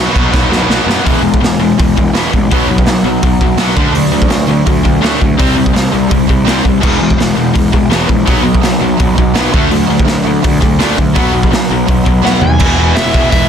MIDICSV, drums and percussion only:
0, 0, Header, 1, 2, 480
1, 0, Start_track
1, 0, Tempo, 360577
1, 1399, Time_signature, 4, 2, 24, 8
1, 17954, End_track
2, 0, Start_track
2, 0, Title_t, "Drums"
2, 208, Note_on_c, 9, 36, 90
2, 215, Note_on_c, 9, 49, 60
2, 341, Note_off_c, 9, 36, 0
2, 349, Note_off_c, 9, 49, 0
2, 447, Note_on_c, 9, 36, 117
2, 452, Note_on_c, 9, 38, 60
2, 580, Note_off_c, 9, 36, 0
2, 585, Note_off_c, 9, 38, 0
2, 696, Note_on_c, 9, 38, 69
2, 829, Note_off_c, 9, 38, 0
2, 934, Note_on_c, 9, 38, 83
2, 1067, Note_off_c, 9, 38, 0
2, 1191, Note_on_c, 9, 38, 89
2, 1324, Note_off_c, 9, 38, 0
2, 1417, Note_on_c, 9, 36, 113
2, 1422, Note_on_c, 9, 46, 58
2, 1551, Note_off_c, 9, 36, 0
2, 1556, Note_off_c, 9, 46, 0
2, 1779, Note_on_c, 9, 36, 89
2, 1913, Note_off_c, 9, 36, 0
2, 1914, Note_on_c, 9, 46, 60
2, 1922, Note_on_c, 9, 38, 112
2, 2047, Note_off_c, 9, 46, 0
2, 2055, Note_off_c, 9, 38, 0
2, 2390, Note_on_c, 9, 36, 106
2, 2396, Note_on_c, 9, 46, 52
2, 2523, Note_off_c, 9, 36, 0
2, 2529, Note_off_c, 9, 46, 0
2, 2629, Note_on_c, 9, 36, 83
2, 2763, Note_off_c, 9, 36, 0
2, 2856, Note_on_c, 9, 46, 54
2, 2864, Note_on_c, 9, 38, 108
2, 2989, Note_off_c, 9, 46, 0
2, 2997, Note_off_c, 9, 38, 0
2, 3107, Note_on_c, 9, 36, 83
2, 3240, Note_off_c, 9, 36, 0
2, 3348, Note_on_c, 9, 36, 111
2, 3348, Note_on_c, 9, 46, 52
2, 3481, Note_off_c, 9, 36, 0
2, 3482, Note_off_c, 9, 46, 0
2, 3704, Note_on_c, 9, 36, 85
2, 3809, Note_on_c, 9, 46, 57
2, 3817, Note_on_c, 9, 38, 103
2, 3837, Note_off_c, 9, 36, 0
2, 3942, Note_off_c, 9, 46, 0
2, 3950, Note_off_c, 9, 38, 0
2, 4294, Note_on_c, 9, 46, 57
2, 4300, Note_on_c, 9, 36, 114
2, 4427, Note_off_c, 9, 46, 0
2, 4433, Note_off_c, 9, 36, 0
2, 4538, Note_on_c, 9, 36, 89
2, 4671, Note_off_c, 9, 36, 0
2, 4762, Note_on_c, 9, 46, 59
2, 4770, Note_on_c, 9, 38, 104
2, 4895, Note_off_c, 9, 46, 0
2, 4903, Note_off_c, 9, 38, 0
2, 5014, Note_on_c, 9, 36, 102
2, 5147, Note_off_c, 9, 36, 0
2, 5256, Note_on_c, 9, 46, 60
2, 5389, Note_off_c, 9, 46, 0
2, 5614, Note_on_c, 9, 36, 88
2, 5724, Note_on_c, 9, 46, 61
2, 5732, Note_on_c, 9, 38, 105
2, 5747, Note_off_c, 9, 36, 0
2, 5857, Note_off_c, 9, 46, 0
2, 5865, Note_off_c, 9, 38, 0
2, 6208, Note_on_c, 9, 46, 58
2, 6215, Note_on_c, 9, 36, 108
2, 6342, Note_off_c, 9, 46, 0
2, 6348, Note_off_c, 9, 36, 0
2, 6458, Note_on_c, 9, 36, 82
2, 6591, Note_off_c, 9, 36, 0
2, 6707, Note_on_c, 9, 46, 50
2, 6715, Note_on_c, 9, 38, 106
2, 6841, Note_off_c, 9, 46, 0
2, 6848, Note_off_c, 9, 38, 0
2, 6942, Note_on_c, 9, 36, 80
2, 7075, Note_off_c, 9, 36, 0
2, 7182, Note_on_c, 9, 36, 108
2, 7185, Note_on_c, 9, 46, 58
2, 7315, Note_off_c, 9, 36, 0
2, 7319, Note_off_c, 9, 46, 0
2, 7537, Note_on_c, 9, 36, 80
2, 7665, Note_on_c, 9, 46, 55
2, 7670, Note_off_c, 9, 36, 0
2, 7673, Note_on_c, 9, 38, 104
2, 7798, Note_off_c, 9, 46, 0
2, 7806, Note_off_c, 9, 38, 0
2, 8137, Note_on_c, 9, 36, 108
2, 8140, Note_on_c, 9, 46, 52
2, 8270, Note_off_c, 9, 36, 0
2, 8273, Note_off_c, 9, 46, 0
2, 8376, Note_on_c, 9, 36, 85
2, 8509, Note_off_c, 9, 36, 0
2, 8616, Note_on_c, 9, 46, 60
2, 8624, Note_on_c, 9, 38, 97
2, 8749, Note_off_c, 9, 46, 0
2, 8757, Note_off_c, 9, 38, 0
2, 8854, Note_on_c, 9, 36, 82
2, 8987, Note_off_c, 9, 36, 0
2, 9092, Note_on_c, 9, 49, 100
2, 9096, Note_on_c, 9, 36, 105
2, 9225, Note_off_c, 9, 49, 0
2, 9229, Note_off_c, 9, 36, 0
2, 9457, Note_on_c, 9, 36, 90
2, 9585, Note_on_c, 9, 46, 59
2, 9590, Note_off_c, 9, 36, 0
2, 9593, Note_on_c, 9, 38, 103
2, 9718, Note_off_c, 9, 46, 0
2, 9726, Note_off_c, 9, 38, 0
2, 10053, Note_on_c, 9, 46, 57
2, 10057, Note_on_c, 9, 36, 105
2, 10186, Note_off_c, 9, 46, 0
2, 10190, Note_off_c, 9, 36, 0
2, 10293, Note_on_c, 9, 36, 98
2, 10426, Note_off_c, 9, 36, 0
2, 10532, Note_on_c, 9, 46, 57
2, 10540, Note_on_c, 9, 38, 101
2, 10666, Note_off_c, 9, 46, 0
2, 10674, Note_off_c, 9, 38, 0
2, 10773, Note_on_c, 9, 36, 86
2, 10906, Note_off_c, 9, 36, 0
2, 11010, Note_on_c, 9, 46, 52
2, 11015, Note_on_c, 9, 36, 102
2, 11143, Note_off_c, 9, 46, 0
2, 11149, Note_off_c, 9, 36, 0
2, 11375, Note_on_c, 9, 36, 87
2, 11487, Note_on_c, 9, 46, 52
2, 11495, Note_on_c, 9, 38, 107
2, 11508, Note_off_c, 9, 36, 0
2, 11620, Note_off_c, 9, 46, 0
2, 11628, Note_off_c, 9, 38, 0
2, 11970, Note_on_c, 9, 46, 53
2, 11980, Note_on_c, 9, 36, 107
2, 12104, Note_off_c, 9, 46, 0
2, 12113, Note_off_c, 9, 36, 0
2, 12220, Note_on_c, 9, 36, 92
2, 12353, Note_off_c, 9, 36, 0
2, 12446, Note_on_c, 9, 46, 59
2, 12454, Note_on_c, 9, 38, 109
2, 12579, Note_off_c, 9, 46, 0
2, 12587, Note_off_c, 9, 38, 0
2, 12697, Note_on_c, 9, 36, 109
2, 12830, Note_off_c, 9, 36, 0
2, 12928, Note_on_c, 9, 46, 58
2, 13061, Note_off_c, 9, 46, 0
2, 13305, Note_on_c, 9, 36, 86
2, 13414, Note_on_c, 9, 46, 61
2, 13422, Note_on_c, 9, 38, 100
2, 13438, Note_off_c, 9, 36, 0
2, 13547, Note_off_c, 9, 46, 0
2, 13555, Note_off_c, 9, 38, 0
2, 13896, Note_on_c, 9, 46, 63
2, 13903, Note_on_c, 9, 36, 104
2, 14029, Note_off_c, 9, 46, 0
2, 14037, Note_off_c, 9, 36, 0
2, 14140, Note_on_c, 9, 36, 94
2, 14273, Note_off_c, 9, 36, 0
2, 14375, Note_on_c, 9, 46, 63
2, 14383, Note_on_c, 9, 38, 106
2, 14508, Note_off_c, 9, 46, 0
2, 14516, Note_off_c, 9, 38, 0
2, 14621, Note_on_c, 9, 36, 89
2, 14754, Note_off_c, 9, 36, 0
2, 14846, Note_on_c, 9, 46, 56
2, 14858, Note_on_c, 9, 36, 108
2, 14979, Note_off_c, 9, 46, 0
2, 14991, Note_off_c, 9, 36, 0
2, 15219, Note_on_c, 9, 36, 85
2, 15346, Note_on_c, 9, 46, 58
2, 15352, Note_off_c, 9, 36, 0
2, 15354, Note_on_c, 9, 38, 107
2, 15479, Note_off_c, 9, 46, 0
2, 15487, Note_off_c, 9, 38, 0
2, 15815, Note_on_c, 9, 46, 57
2, 15821, Note_on_c, 9, 36, 115
2, 15948, Note_off_c, 9, 46, 0
2, 15954, Note_off_c, 9, 36, 0
2, 16058, Note_on_c, 9, 36, 94
2, 16192, Note_off_c, 9, 36, 0
2, 16314, Note_on_c, 9, 38, 58
2, 16447, Note_off_c, 9, 38, 0
2, 16525, Note_on_c, 9, 43, 86
2, 16658, Note_off_c, 9, 43, 0
2, 16767, Note_on_c, 9, 57, 127
2, 16779, Note_on_c, 9, 36, 107
2, 16900, Note_off_c, 9, 57, 0
2, 16912, Note_off_c, 9, 36, 0
2, 17256, Note_on_c, 9, 46, 65
2, 17264, Note_on_c, 9, 38, 121
2, 17389, Note_off_c, 9, 46, 0
2, 17397, Note_off_c, 9, 38, 0
2, 17497, Note_on_c, 9, 36, 88
2, 17630, Note_off_c, 9, 36, 0
2, 17733, Note_on_c, 9, 46, 65
2, 17737, Note_on_c, 9, 36, 105
2, 17867, Note_off_c, 9, 46, 0
2, 17870, Note_off_c, 9, 36, 0
2, 17954, End_track
0, 0, End_of_file